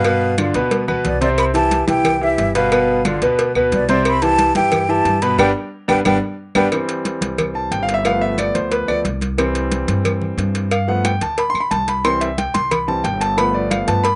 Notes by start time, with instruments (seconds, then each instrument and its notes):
Already playing: upright bass G2, flute F5
0.04 grand piano B2 B3 B4, cowbell, high conga, claves
0.22 high conga
0.38 grand piano D3 D4 F4, cowbell, high conga, claves
0.54 upright bass D2, grand piano B2 B3 B4, cowbell, high conga
0.71 cowbell, high conga
0.88 upright bass D2, grand piano B2 B3 B4, low conga, claves
1.05 upright bass C2, flute D5, cowbell, low conga
1.21 grand piano C3 C4 C5, flute D5, cowbell, low conga
1.38 flute B5, cowbell, high conga, claves
1.54 grand piano E3 E4 G4, flute A5, cowbell, high conga
1.71 cowbell, high conga
1.87 upright bass C2, grand piano E3 E4 G4, flute G5, cowbell, high conga
2.04 cowbell, high conga, low conga, claves
2.21 grand piano E3 E4 G4, flute E5, high conga
2.38 upright bass G1, cowbell, high conga
2.55 grand piano B2 B3 B4, flute F5, cowbell, high conga
2.72 grand piano B2 B3 B4, cowbell, high conga, claves
2.88 high conga
3.05 grand piano D3 D4 F4, cowbell, high conga, claves
3.22 upright bass D2, grand piano B2 B3 B4, cowbell, high conga
3.38 cowbell, high conga
3.55 upright bass D2, grand piano B2 B3 B4, high conga, claves
3.72 upright bass C2, flute D5, cowbell, high conga
3.89 grand piano C3 C4 C5, flute D5, cowbell, high conga
4.05 flute B5, cowbell, claves
4.22 grand piano E3 E4 G4, flute A5, cowbell, high conga
4.39 cowbell, high conga
4.55 upright bass G2, grand piano E3 E4 G4, flute G5, cowbell, high conga
4.72 cowbell, high conga, low conga, claves
4.89 grand piano E3 E4 G4, flute A5, high conga
5.05 upright bass G2, cowbell, high conga
5.22 grand piano B2 B3 B4, flute B5, cowbell, high conga
5.38 upright bass G1, grand piano G3 B3 D4, flute G5, cowbell, high conga, claves
5.88 upright bass G1, grand piano G3 B3 D4, flute G5, cowbell, high conga, claves
6.05 upright bass G1, grand piano G3 B3 D4, flute G5, cowbell, high conga, claves
6.55 upright bass G1, grand piano G3 B3 D4, flute G5, cowbell, high conga, claves
6.72 grand piano E3 G3 C4, cowbell, high conga, claves
6.89 cowbell, high conga
7.05 cowbell, high conga
7.21 upright bass C2, cowbell, high conga
7.38 cowbell, high conga, low conga, claves
7.55 grand piano A5, high conga
7.71 upright bass G1, grand piano G5, cowbell, high conga
7.83 grand piano F5
7.88 cowbell, high conga
7.94 grand piano E5
8.04 grand piano F3 A3 B3 F5, cowbell, high conga, claves
8.21 grand piano E5, high conga
8.38 grand piano D5, cowbell, high conga, claves
8.55 upright bass D2, grand piano C5, cowbell, high conga
8.71 grand piano B4, cowbell, high conga
8.88 upright bass D2, grand piano F3 A3 B3 D5, high conga, claves
9.05 upright bass C2, cowbell, high conga
9.21 cowbell, high conga
9.38 grand piano E3 G3 C4, cowbell, claves
9.55 cowbell, high conga
9.72 cowbell, high conga
9.88 upright bass G2, cowbell, high conga
10.05 cowbell, high conga, low conga, claves
10.22 high conga, low conga
10.38 upright bass G2, cowbell, high conga
10.55 cowbell, high conga
10.71 grand piano F5, cowbell, high conga, claves
10.88 grand piano F3 A3 B3 F#5, high conga
11.05 grand piano G5, cowbell, high conga, claves
11.21 upright bass D2, grand piano A5, cowbell, high conga
11.38 grand piano B5, cowbell, high conga
11.50 grand piano C6
11.54 upright bass D2, high conga, claves
11.60 grand piano B5
11.71 upright bass C2, grand piano A5, cowbell, high conga
11.88 grand piano B5, cowbell, high conga
12.04 grand piano E3 G3 C4 C6, cowbell, high conga, claves
12.21 grand piano E5, cowbell, high conga
12.38 grand piano G5, cowbell, high conga
12.54 upright bass C2, grand piano C6, cowbell, high conga
12.71 grand piano B5, cowbell, high conga, low conga, claves
12.88 grand piano E3 G3 C4 A5, high conga, low conga
13.04 upright bass G1, grand piano G5, cowbell
13.21 grand piano A5, cowbell, high conga
13.37 grand piano F3 A3 B3 B5, cowbell, high conga, claves
13.54 grand piano D5, high conga
13.71 grand piano F5, cowbell, high conga, claves
13.87 upright bass G2, grand piano F3 A3 B3 A5, cowbell, high conga
14.04 grand piano B5, cowbell, high conga